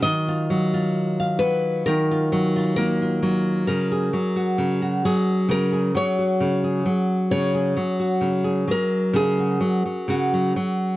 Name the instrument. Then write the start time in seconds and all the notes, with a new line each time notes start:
nylon-string guitar
Already playing: F#3 F#4
0.02 D#3 D#5
0.28 F4
0.50 F#3
0.74 F4
1.20 F5
1.39 F#3 B4
1.86 D#3 A#4
2.11 F4
2.32 F#3
2.56 F4
2.76 A#3 A#4
3.02 F4
3.23 F#3
3.67 C#3 A#4
3.92 G#4
4.13 F#3
4.36 F#4
4.58 C#3
4.82 F#4
5.05 F#3 G#4
5.49 C#3 A#4
5.73 G#4
5.95 F#3 C#5
6.19 F#4
6.41 C#3
6.64 G#4
6.86 F#3
7.31 C#3 C#5
7.54 G#4
7.77 F#3
7.99 F#4
8.21 C#3
8.44 G#4
8.67 F#3 A#4
9.14 C#3 G#4
9.39 F#4
9.61 F#3
9.86 F#3
10.08 C#3 F#4
10.34 F#3
10.56 F#3